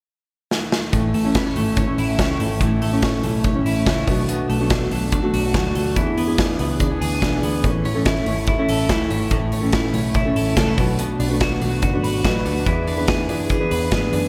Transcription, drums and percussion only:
0.51 snare
0.72 snare
0.93 kick, closed hi-hat
1.14 open hi-hat
1.35 kick, snare, closed hi-hat
1.56 open hi-hat
1.77 kick, closed hi-hat
1.98 open hi-hat
2.19 kick, snare, closed hi-hat
2.40 open hi-hat
2.61 kick, closed hi-hat
2.82 open hi-hat
3.02 kick, snare, closed hi-hat
3.23 open hi-hat
3.44 kick, closed hi-hat
3.66 open hi-hat
3.86 kick, snare, closed hi-hat
4.08 kick, open hi-hat
4.29 closed hi-hat
4.50 open hi-hat
4.70 kick, snare, closed hi-hat
4.91 open hi-hat
5.12 kick, closed hi-hat
5.34 open hi-hat
5.54 kick, snare, closed hi-hat
5.75 open hi-hat
5.96 kick, closed hi-hat
6.18 open hi-hat
6.38 kick, snare, closed hi-hat
6.59 open hi-hat
6.80 kick, closed hi-hat
7.02 open hi-hat
7.22 kick, snare, closed hi-hat
7.43 open hi-hat
7.64 kick, closed hi-hat
7.85 open hi-hat
8.05 kick, snare, closed hi-hat
8.26 open hi-hat
8.47 kick, closed hi-hat
8.69 open hi-hat
8.89 kick, snare, closed hi-hat
9.10 open hi-hat
9.31 kick, closed hi-hat
9.52 open hi-hat
9.73 kick, snare, closed hi-hat
9.94 open hi-hat
10.14 kick, closed hi-hat
10.36 open hi-hat
10.57 kick, snare, closed hi-hat
10.78 kick, open hi-hat
10.99 closed hi-hat
11.20 open hi-hat
11.40 kick, snare, closed hi-hat
11.62 open hi-hat
11.82 kick, closed hi-hat
12.04 open hi-hat
12.25 kick, snare, closed hi-hat
12.46 open hi-hat
12.66 kick, closed hi-hat
12.87 open hi-hat
13.08 kick, snare, closed hi-hat
13.29 open hi-hat
13.49 kick, closed hi-hat
13.71 open hi-hat
13.92 kick, snare, closed hi-hat
14.13 open hi-hat

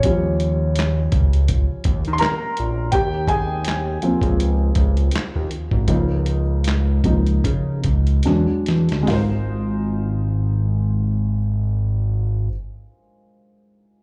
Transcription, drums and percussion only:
0.03 kick, closed hi-hat
0.40 closed hi-hat
0.76 snare, closed hi-hat
0.80 clap
1.12 kick, closed hi-hat
1.33 closed hi-hat
1.48 kick, closed hi-hat
1.84 kick, closed hi-hat
2.05 closed hi-hat
2.18 closed hi-hat
2.23 snare, clap
2.57 closed hi-hat
2.92 kick, closed hi-hat
3.28 kick, closed hi-hat
3.65 snare, closed hi-hat
3.69 clap
4.02 closed hi-hat
4.22 kick, closed hi-hat
4.40 closed hi-hat
4.75 kick, closed hi-hat
4.97 closed hi-hat
5.11 closed hi-hat
5.16 snare, clap
5.51 closed hi-hat
5.71 kick
5.88 kick, closed hi-hat
6.26 closed hi-hat
6.64 snare, closed hi-hat
6.68 clap
7.04 kick, closed hi-hat
7.26 closed hi-hat
7.44 kick, closed hi-hat
7.84 kick, closed hi-hat
8.07 closed hi-hat
8.23 snare, closed hi-hat
8.66 snare, closed hi-hat
8.89 snare, closed hi-hat
9.07 snare, floor tom, open hi-hat

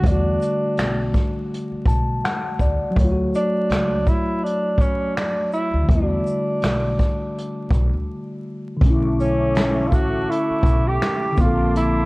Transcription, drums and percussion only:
0.04 kick, closed hi-hat
0.42 closed hi-hat, shaker
0.77 finger snap, snare, closed hi-hat
1.14 kick, snare, shaker
1.54 closed hi-hat
1.85 kick, shaker
2.25 finger snap, snare, closed hi-hat
2.59 kick, shaker
2.96 kick, closed hi-hat
3.35 closed hi-hat, shaker
3.70 finger snap, snare, closed hi-hat
4.07 kick, shaker
4.46 closed hi-hat
4.78 kick, shaker
5.17 finger snap, snare, closed hi-hat
5.53 shaker
5.89 kick, closed hi-hat
6.27 shaker
6.62 finger snap, snare, closed hi-hat
6.99 kick, snare, shaker
7.38 closed hi-hat
7.71 kick, closed hi-hat, shaker
8.81 kick, closed hi-hat
9.20 closed hi-hat, shaker
9.55 finger snap, snare, closed hi-hat
9.92 kick, shaker
10.31 closed hi-hat
10.63 kick, closed hi-hat, shaker
11.02 finger snap, snare, closed hi-hat
11.37 kick, shaker
11.76 closed hi-hat

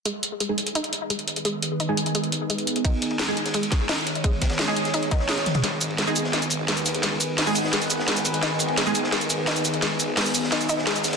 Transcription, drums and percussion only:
0.06 closed hi-hat
0.23 closed hi-hat
0.40 closed hi-hat
0.58 closed hi-hat
0.67 closed hi-hat
0.75 closed hi-hat
0.84 closed hi-hat
0.93 closed hi-hat
1.10 closed hi-hat
1.19 closed hi-hat
1.28 closed hi-hat
1.36 closed hi-hat
1.45 closed hi-hat
1.62 closed hi-hat
1.80 closed hi-hat
1.97 closed hi-hat
2.06 closed hi-hat
2.15 closed hi-hat
2.24 closed hi-hat
2.32 closed hi-hat
2.50 closed hi-hat
2.58 closed hi-hat
2.67 closed hi-hat
2.76 closed hi-hat
2.85 kick, closed hi-hat, ride
3.02 closed hi-hat, ride
3.11 ride
3.19 snare, closed hi-hat, ride
3.37 closed hi-hat, ride
3.46 snare, closed hi-hat
3.54 closed hi-hat, ride
3.63 closed hi-hat
3.72 kick, snare, closed hi-hat, ride
3.89 snare, closed hi-hat, ride
3.98 closed hi-hat
4.06 snare, closed hi-hat, ride
4.15 closed hi-hat
4.24 kick, closed hi-hat, ride
4.41 kick, snare, closed hi-hat, ride
4.50 snare, ride
4.59 snare, closed hi-hat, ride
4.68 snare, ride
4.76 closed hi-hat, ride
4.85 snare, closed hi-hat
4.93 snare, closed hi-hat, ride
5.03 closed hi-hat
5.11 kick, snare, closed hi-hat, ride
5.19 snare
5.28 snare, closed hi-hat, ride
5.37 snare, closed hi-hat, ride
5.46 snare, closed hi-hat, high tom, ride
5.54 snare, closed hi-hat, mid tom, ride
5.63 snare, closed hi-hat, ride
5.81 closed hi-hat, ride, shaker
5.90 ride
5.98 snare, closed hi-hat, ride
6.07 shaker
6.16 closed hi-hat, ride, shaker
6.24 snare
6.33 snare, closed hi-hat, ride
6.42 closed hi-hat, shaker
6.50 closed hi-hat, ride, shaker
6.68 snare, closed hi-hat, ride
6.77 closed hi-hat, shaker
6.86 snare, closed hi-hat, ride, shaker
6.95 closed hi-hat
7.03 snare, closed hi-hat, ride
7.20 closed hi-hat, ride, shaker
7.38 snare, closed hi-hat, open hi-hat
7.47 shaker
7.55 closed hi-hat, ride, shaker
7.64 snare
7.73 snare, closed hi-hat, ride
7.82 closed hi-hat, shaker
7.90 closed hi-hat, ride, shaker
7.99 snare
8.07 snare, closed hi-hat, ride
8.16 snare, closed hi-hat, shaker
8.25 closed hi-hat, ride, shaker
8.34 closed hi-hat
8.43 snare, closed hi-hat, ride
8.59 closed hi-hat, ride, shaker
8.68 ride
8.77 snare, closed hi-hat, ride
8.86 shaker
8.95 closed hi-hat, ride, shaker
9.04 snare
9.12 snare, closed hi-hat, ride
9.21 closed hi-hat, shaker
9.30 closed hi-hat, ride, shaker
9.47 snare, closed hi-hat, ride
9.56 closed hi-hat, shaker
9.65 snare, closed hi-hat, ride, shaker
9.74 closed hi-hat
9.82 snare, closed hi-hat, ride
9.99 closed hi-hat, ride, shaker
10.17 snare, closed hi-hat, open hi-hat
10.26 shaker
10.35 closed hi-hat, ride, shaker
10.44 snare
10.52 snare, closed hi-hat, ride
10.61 closed hi-hat, shaker
10.69 closed hi-hat, ride, shaker
10.78 snare
10.87 snare, closed hi-hat, ride
10.96 snare, closed hi-hat, shaker
11.04 snare, closed hi-hat, ride, shaker
11.08 snare, ride
11.13 snare, closed hi-hat, ride

